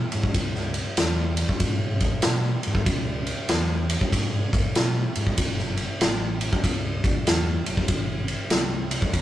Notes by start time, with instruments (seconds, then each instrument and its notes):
0.12 fingered electric bass G#2, ride
0.23 kick
0.34 fingered electric bass C#2, kick, ride
0.55 snare
0.74 ride
0.97 fingered electric bass E2, snare, ride
1.37 ride
1.49 kick
1.60 fingered electric bass G#2, kick, ride
2.00 kick, ride
2.22 fingered electric bass B2, snare, ride
2.63 fingered electric bass G#2, ride
2.75 kick
2.86 fingered electric bass C#2, kick, ride
3.27 ride
3.49 fingered electric bass E2, snare, ride
3.90 ride
4.01 kick
4.13 fingered electric bass G#2, kick, ride
4.53 kick, ride
4.75 fingered electric bass B2, snare, ride
5.15 fingered electric bass G#2, ride
5.27 kick
5.38 fingered electric bass F#1, kick, ride
5.59 snare
5.77 ride
6.01 fingered electric bass A1, snare, ride
6.41 ride
6.53 kick
6.64 fingered electric bass C#2, kick, ride
7.04 kick, ride
7.27 fingered electric bass E2, snare, ride
7.66 fingered electric bass F#1, ride
7.77 kick
7.88 fingered electric bass G#1, kick, ride
8.28 ride
8.50 fingered electric bass C2, snare, ride
8.91 ride
9.02 kick
9.13 fingered electric bass D#2, kick, ride